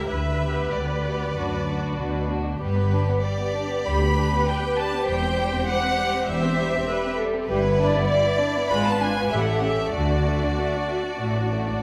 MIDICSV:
0, 0, Header, 1, 6, 480
1, 0, Start_track
1, 0, Key_signature, 1, "major"
1, 0, Tempo, 626959
1, 76, Time_signature, 4, 2, 24, 8
1, 2956, Tempo, 604839
1, 5832, Key_signature, 2, "major"
1, 6796, Tempo, 624350
1, 9199, End_track
2, 0, Start_track
2, 0, Title_t, "Violin section"
2, 0, Program_c, 0, 48
2, 67, Note_on_c, 0, 76, 49
2, 544, Note_off_c, 0, 76, 0
2, 553, Note_on_c, 0, 74, 38
2, 1758, Note_off_c, 0, 74, 0
2, 2000, Note_on_c, 0, 71, 46
2, 2442, Note_off_c, 0, 71, 0
2, 2467, Note_on_c, 0, 74, 52
2, 2943, Note_off_c, 0, 74, 0
2, 2952, Note_on_c, 0, 83, 54
2, 3437, Note_off_c, 0, 83, 0
2, 3447, Note_on_c, 0, 79, 49
2, 3682, Note_on_c, 0, 81, 57
2, 3683, Note_off_c, 0, 79, 0
2, 3921, Note_off_c, 0, 81, 0
2, 3923, Note_on_c, 0, 79, 57
2, 4387, Note_off_c, 0, 79, 0
2, 4399, Note_on_c, 0, 78, 63
2, 4865, Note_off_c, 0, 78, 0
2, 4872, Note_on_c, 0, 76, 54
2, 5577, Note_off_c, 0, 76, 0
2, 5822, Note_on_c, 0, 71, 62
2, 6274, Note_off_c, 0, 71, 0
2, 6313, Note_on_c, 0, 74, 67
2, 6785, Note_off_c, 0, 74, 0
2, 6795, Note_on_c, 0, 83, 64
2, 6912, Note_off_c, 0, 83, 0
2, 6925, Note_on_c, 0, 81, 56
2, 7030, Note_on_c, 0, 80, 55
2, 7037, Note_off_c, 0, 81, 0
2, 7263, Note_on_c, 0, 76, 40
2, 7267, Note_off_c, 0, 80, 0
2, 7324, Note_on_c, 0, 78, 40
2, 7327, Note_off_c, 0, 76, 0
2, 7388, Note_on_c, 0, 76, 40
2, 7389, Note_off_c, 0, 78, 0
2, 7453, Note_off_c, 0, 76, 0
2, 7456, Note_on_c, 0, 78, 41
2, 7518, Note_off_c, 0, 78, 0
2, 7522, Note_on_c, 0, 76, 50
2, 7748, Note_off_c, 0, 76, 0
2, 7754, Note_on_c, 0, 74, 48
2, 9168, Note_off_c, 0, 74, 0
2, 9199, End_track
3, 0, Start_track
3, 0, Title_t, "Viola section"
3, 0, Program_c, 1, 48
3, 0, Note_on_c, 1, 70, 51
3, 76, Note_on_c, 1, 71, 35
3, 79, Note_off_c, 1, 70, 0
3, 1730, Note_off_c, 1, 71, 0
3, 2961, Note_on_c, 1, 67, 37
3, 3184, Note_off_c, 1, 67, 0
3, 3202, Note_on_c, 1, 71, 47
3, 3907, Note_off_c, 1, 71, 0
3, 3921, Note_on_c, 1, 72, 47
3, 4854, Note_off_c, 1, 72, 0
3, 4874, Note_on_c, 1, 72, 50
3, 5343, Note_off_c, 1, 72, 0
3, 5354, Note_on_c, 1, 71, 49
3, 5588, Note_off_c, 1, 71, 0
3, 5595, Note_on_c, 1, 69, 50
3, 5833, Note_off_c, 1, 69, 0
3, 5836, Note_on_c, 1, 67, 49
3, 5899, Note_off_c, 1, 67, 0
3, 6074, Note_on_c, 1, 74, 58
3, 6781, Note_off_c, 1, 74, 0
3, 6795, Note_on_c, 1, 71, 45
3, 7258, Note_off_c, 1, 71, 0
3, 7270, Note_on_c, 1, 69, 39
3, 7746, Note_on_c, 1, 66, 39
3, 7747, Note_off_c, 1, 69, 0
3, 9199, Note_off_c, 1, 66, 0
3, 9199, End_track
4, 0, Start_track
4, 0, Title_t, "Violin section"
4, 0, Program_c, 2, 48
4, 315, Note_on_c, 2, 67, 30
4, 316, Note_on_c, 2, 59, 29
4, 787, Note_off_c, 2, 59, 0
4, 789, Note_off_c, 2, 67, 0
4, 796, Note_on_c, 2, 59, 23
4, 799, Note_on_c, 2, 67, 25
4, 1032, Note_off_c, 2, 59, 0
4, 1034, Note_off_c, 2, 67, 0
4, 1037, Note_on_c, 2, 62, 27
4, 1039, Note_on_c, 2, 66, 29
4, 1266, Note_off_c, 2, 62, 0
4, 1269, Note_off_c, 2, 66, 0
4, 1275, Note_on_c, 2, 62, 24
4, 1278, Note_on_c, 2, 66, 25
4, 1743, Note_off_c, 2, 62, 0
4, 1743, Note_off_c, 2, 66, 0
4, 1752, Note_on_c, 2, 62, 25
4, 1752, Note_on_c, 2, 66, 25
4, 1991, Note_off_c, 2, 62, 0
4, 1992, Note_off_c, 2, 66, 0
4, 1994, Note_on_c, 2, 67, 38
4, 1997, Note_on_c, 2, 55, 39
4, 2109, Note_off_c, 2, 55, 0
4, 2112, Note_on_c, 2, 59, 33
4, 2234, Note_off_c, 2, 59, 0
4, 2237, Note_on_c, 2, 62, 36
4, 2348, Note_on_c, 2, 59, 33
4, 2355, Note_off_c, 2, 62, 0
4, 2469, Note_off_c, 2, 59, 0
4, 2474, Note_on_c, 2, 55, 35
4, 2593, Note_off_c, 2, 55, 0
4, 2593, Note_on_c, 2, 59, 32
4, 2713, Note_on_c, 2, 62, 33
4, 2714, Note_off_c, 2, 59, 0
4, 2831, Note_on_c, 2, 59, 29
4, 2835, Note_off_c, 2, 62, 0
4, 2953, Note_off_c, 2, 59, 0
4, 2962, Note_on_c, 2, 55, 37
4, 3073, Note_off_c, 2, 55, 0
4, 3078, Note_on_c, 2, 59, 33
4, 3195, Note_on_c, 2, 62, 31
4, 3199, Note_off_c, 2, 59, 0
4, 3316, Note_on_c, 2, 59, 35
4, 3317, Note_off_c, 2, 62, 0
4, 3434, Note_on_c, 2, 55, 34
4, 3437, Note_off_c, 2, 59, 0
4, 3555, Note_on_c, 2, 59, 36
4, 3556, Note_off_c, 2, 55, 0
4, 3677, Note_off_c, 2, 59, 0
4, 3679, Note_on_c, 2, 62, 37
4, 3798, Note_on_c, 2, 59, 34
4, 3799, Note_off_c, 2, 62, 0
4, 3918, Note_on_c, 2, 55, 41
4, 3919, Note_off_c, 2, 59, 0
4, 4029, Note_off_c, 2, 55, 0
4, 4034, Note_on_c, 2, 60, 36
4, 4155, Note_off_c, 2, 60, 0
4, 4158, Note_on_c, 2, 55, 40
4, 4276, Note_off_c, 2, 55, 0
4, 4277, Note_on_c, 2, 60, 36
4, 4395, Note_off_c, 2, 60, 0
4, 4396, Note_on_c, 2, 55, 38
4, 4514, Note_off_c, 2, 55, 0
4, 4520, Note_on_c, 2, 60, 36
4, 4631, Note_on_c, 2, 55, 37
4, 4636, Note_off_c, 2, 60, 0
4, 4752, Note_off_c, 2, 55, 0
4, 4758, Note_on_c, 2, 60, 33
4, 4873, Note_on_c, 2, 55, 42
4, 4875, Note_off_c, 2, 60, 0
4, 4984, Note_off_c, 2, 55, 0
4, 4997, Note_on_c, 2, 60, 38
4, 5114, Note_off_c, 2, 60, 0
4, 5120, Note_on_c, 2, 55, 37
4, 5236, Note_off_c, 2, 55, 0
4, 5241, Note_on_c, 2, 60, 41
4, 5356, Note_off_c, 2, 60, 0
4, 5367, Note_on_c, 2, 55, 39
4, 5479, Note_off_c, 2, 55, 0
4, 5483, Note_on_c, 2, 60, 39
4, 5597, Note_off_c, 2, 60, 0
4, 5610, Note_on_c, 2, 55, 42
4, 5721, Note_off_c, 2, 55, 0
4, 5727, Note_on_c, 2, 60, 38
4, 5797, Note_off_c, 2, 67, 0
4, 5839, Note_off_c, 2, 60, 0
4, 5847, Note_on_c, 2, 55, 49
4, 5848, Note_on_c, 2, 64, 47
4, 5951, Note_off_c, 2, 55, 0
4, 5966, Note_on_c, 2, 59, 41
4, 6079, Note_off_c, 2, 59, 0
4, 6081, Note_on_c, 2, 62, 48
4, 6196, Note_off_c, 2, 62, 0
4, 6207, Note_on_c, 2, 59, 43
4, 6319, Note_off_c, 2, 59, 0
4, 6325, Note_on_c, 2, 55, 42
4, 6438, Note_off_c, 2, 55, 0
4, 6442, Note_on_c, 2, 59, 39
4, 6557, Note_off_c, 2, 59, 0
4, 6560, Note_on_c, 2, 62, 36
4, 6677, Note_off_c, 2, 62, 0
4, 6682, Note_on_c, 2, 59, 36
4, 6783, Note_off_c, 2, 64, 0
4, 6798, Note_off_c, 2, 59, 0
4, 6799, Note_on_c, 2, 65, 46
4, 6802, Note_on_c, 2, 56, 45
4, 6908, Note_off_c, 2, 56, 0
4, 6911, Note_on_c, 2, 59, 40
4, 7030, Note_off_c, 2, 59, 0
4, 7031, Note_on_c, 2, 62, 36
4, 7149, Note_off_c, 2, 62, 0
4, 7152, Note_on_c, 2, 59, 38
4, 7265, Note_on_c, 2, 55, 37
4, 7266, Note_on_c, 2, 67, 37
4, 7269, Note_off_c, 2, 59, 0
4, 7270, Note_off_c, 2, 65, 0
4, 7377, Note_off_c, 2, 55, 0
4, 7386, Note_on_c, 2, 57, 33
4, 7500, Note_on_c, 2, 61, 34
4, 7505, Note_off_c, 2, 57, 0
4, 7622, Note_off_c, 2, 61, 0
4, 7630, Note_on_c, 2, 57, 32
4, 7739, Note_off_c, 2, 57, 0
4, 7745, Note_off_c, 2, 67, 0
4, 7748, Note_on_c, 2, 57, 34
4, 7748, Note_on_c, 2, 66, 36
4, 7860, Note_off_c, 2, 57, 0
4, 7870, Note_on_c, 2, 62, 30
4, 7990, Note_off_c, 2, 62, 0
4, 7991, Note_on_c, 2, 57, 34
4, 8112, Note_off_c, 2, 57, 0
4, 8112, Note_on_c, 2, 62, 31
4, 8228, Note_on_c, 2, 57, 29
4, 8233, Note_off_c, 2, 62, 0
4, 8350, Note_on_c, 2, 62, 29
4, 8351, Note_off_c, 2, 57, 0
4, 8473, Note_off_c, 2, 62, 0
4, 8476, Note_on_c, 2, 57, 27
4, 8589, Note_on_c, 2, 62, 27
4, 8596, Note_off_c, 2, 57, 0
4, 8712, Note_off_c, 2, 62, 0
4, 8713, Note_on_c, 2, 57, 34
4, 8825, Note_off_c, 2, 57, 0
4, 8838, Note_on_c, 2, 62, 29
4, 8956, Note_off_c, 2, 62, 0
4, 8960, Note_on_c, 2, 57, 29
4, 9071, Note_on_c, 2, 62, 30
4, 9076, Note_off_c, 2, 57, 0
4, 9192, Note_off_c, 2, 62, 0
4, 9199, Note_off_c, 2, 66, 0
4, 9199, End_track
5, 0, Start_track
5, 0, Title_t, "Cello section"
5, 0, Program_c, 3, 48
5, 79, Note_on_c, 3, 38, 32
5, 503, Note_off_c, 3, 38, 0
5, 559, Note_on_c, 3, 38, 34
5, 1009, Note_off_c, 3, 38, 0
5, 1039, Note_on_c, 3, 42, 35
5, 1518, Note_off_c, 3, 42, 0
5, 1519, Note_on_c, 3, 47, 37
5, 1991, Note_off_c, 3, 47, 0
5, 2002, Note_on_c, 3, 43, 43
5, 2394, Note_off_c, 3, 43, 0
5, 2959, Note_on_c, 3, 38, 43
5, 3360, Note_off_c, 3, 38, 0
5, 3920, Note_on_c, 3, 40, 42
5, 4316, Note_off_c, 3, 40, 0
5, 4876, Note_on_c, 3, 40, 50
5, 5274, Note_off_c, 3, 40, 0
5, 5833, Note_on_c, 3, 43, 54
5, 6232, Note_off_c, 3, 43, 0
5, 6796, Note_on_c, 3, 44, 54
5, 7189, Note_off_c, 3, 44, 0
5, 7269, Note_on_c, 3, 45, 43
5, 7666, Note_off_c, 3, 45, 0
5, 7749, Note_on_c, 3, 50, 41
5, 8153, Note_off_c, 3, 50, 0
5, 8718, Note_on_c, 3, 45, 37
5, 9115, Note_off_c, 3, 45, 0
5, 9199, End_track
6, 0, Start_track
6, 0, Title_t, "Double bass section"
6, 0, Program_c, 4, 48
6, 71, Note_on_c, 4, 38, 37
6, 499, Note_off_c, 4, 38, 0
6, 553, Note_on_c, 4, 38, 35
6, 980, Note_off_c, 4, 38, 0
6, 1038, Note_on_c, 4, 38, 32
6, 1461, Note_off_c, 4, 38, 0
6, 1514, Note_on_c, 4, 38, 31
6, 1942, Note_off_c, 4, 38, 0
6, 2001, Note_on_c, 4, 31, 39
6, 2394, Note_off_c, 4, 31, 0
6, 2958, Note_on_c, 4, 38, 41
6, 3360, Note_off_c, 4, 38, 0
6, 3918, Note_on_c, 4, 28, 48
6, 4314, Note_off_c, 4, 28, 0
6, 4872, Note_on_c, 4, 28, 45
6, 5271, Note_off_c, 4, 28, 0
6, 5834, Note_on_c, 4, 31, 52
6, 6232, Note_off_c, 4, 31, 0
6, 6797, Note_on_c, 4, 32, 47
6, 7189, Note_off_c, 4, 32, 0
6, 7267, Note_on_c, 4, 33, 41
6, 7665, Note_off_c, 4, 33, 0
6, 7746, Note_on_c, 4, 38, 42
6, 8151, Note_off_c, 4, 38, 0
6, 8716, Note_on_c, 4, 33, 38
6, 9114, Note_off_c, 4, 33, 0
6, 9199, End_track
0, 0, End_of_file